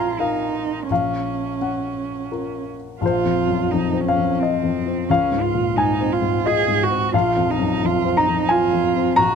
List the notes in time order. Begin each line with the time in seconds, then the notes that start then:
Already playing: A#1 C4 F4 F5 G#5 A#5 C6
0.19 D#4 F4 A#4 F5
0.90 A#1 C#4 F5
1.61 C#4 F#5
2.32 F4 A#4
3.01 A#1 F4
3.06 C5
3.24 F2
3.47 F#2
3.71 F2 D#4
3.93 C4
4.04 C#4
4.08 F5
4.17 F2
4.39 C4 F4 D#5
4.63 F2
4.86 C4
5.09 C#2 C#4 F5
5.32 G#2
5.42 F4
5.54 A#2
5.76 G#2 D#4 G#5
6.01 C4
6.12 F4
6.22 G#2
6.44 F4 G#4 D#5
6.68 G#2
6.83 F#4
6.90 C4
7.13 A#1 F4 F5
7.36 F2
7.51 D#4
7.59 F#2
7.82 F2 F4
8.05 C4
8.17 D#4 A#5
8.28 F2
8.49 F4 G#5
8.73 F2
8.96 C4
9.16 A#1 F#4 A#5